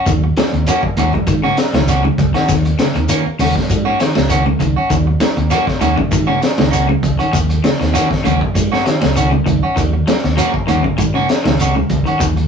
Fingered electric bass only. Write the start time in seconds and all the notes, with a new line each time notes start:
0.06 D#2
0.53 D#2
0.83 muted fingered electric bass stroke
0.97 D#2
1.27 G#2
1.73 C#2
2.18 C#2
2.48 D#2
2.95 D#2
3.26 muted fingered electric bass stroke
3.39 D#2
3.70 G#2
4.16 C#2
4.60 C#2
4.90 D#2
5.37 D#2
5.67 muted fingered electric bass stroke
5.82 D#2
6.12 G#2
6.59 C#2
7.03 C#2
7.33 D#2
7.81 D#2
8.11 muted fingered electric bass stroke
8.26 D#2
8.55 G#2
9.03 C#2
9.46 C#2
9.77 D#2
10.24 D#2
10.54 muted fingered electric bass stroke
10.69 D#2
10.98 G#2
11.45 C#2
11.89 C#2
12.20 D#2